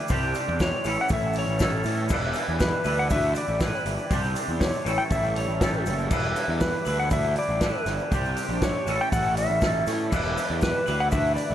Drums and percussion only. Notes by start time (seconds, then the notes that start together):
0.08 kick, open hi-hat, shaker
0.22 shaker
0.34 open hi-hat, shaker
0.59 kick, snare, open hi-hat, shaker
0.84 open hi-hat, shaker
0.97 shaker
1.09 kick, open hi-hat, shaker
1.21 shaker
1.33 open hi-hat, shaker
1.47 shaker
1.59 kick, snare, open hi-hat, shaker
1.83 open hi-hat, shaker
1.96 shaker
2.09 kick, crash, shaker
2.22 shaker
2.33 open hi-hat, shaker
2.60 kick, snare, open hi-hat, shaker
2.84 open hi-hat, shaker
2.97 shaker
3.10 kick, open hi-hat, shaker
3.23 shaker
3.35 open hi-hat, shaker
3.48 shaker
3.60 kick, snare, open hi-hat, shaker
3.86 open hi-hat, shaker
3.99 shaker
4.10 kick, open hi-hat, shaker
4.23 shaker
4.35 open hi-hat, shaker
4.48 shaker
4.61 kick, snare, open hi-hat, shaker
4.74 shaker
4.86 open hi-hat, shaker
4.99 shaker
5.10 kick, open hi-hat, shaker
5.24 shaker
5.36 open hi-hat
5.50 shaker
5.61 kick, snare, open hi-hat, shaker
5.73 shaker
5.86 open hi-hat, shaker
5.99 shaker
6.11 kick, crash, shaker
6.24 shaker
6.36 open hi-hat, shaker
6.61 kick, snare, open hi-hat, shaker
6.85 open hi-hat, shaker
6.99 shaker
7.11 kick, open hi-hat, shaker
7.24 shaker
7.36 open hi-hat
7.48 shaker
7.61 kick, snare, open hi-hat, shaker
7.86 snare, open hi-hat, shaker
8.00 shaker
8.12 kick, open hi-hat, shaker
8.26 shaker
8.37 open hi-hat, shaker
8.62 kick, snare, open hi-hat, shaker
8.87 open hi-hat, shaker
9.00 shaker
9.12 kick, open hi-hat, shaker
9.25 shaker
9.37 open hi-hat, shaker
9.50 shaker
9.61 kick, snare, open hi-hat, shaker
9.87 snare, open hi-hat, shaker
10.00 shaker
10.12 kick, crash, shaker
10.25 shaker
10.37 open hi-hat, shaker
10.61 kick, snare, open hi-hat, shaker
10.87 open hi-hat, shaker
11.00 shaker
11.11 kick, open hi-hat, shaker
11.36 open hi-hat, shaker
11.49 shaker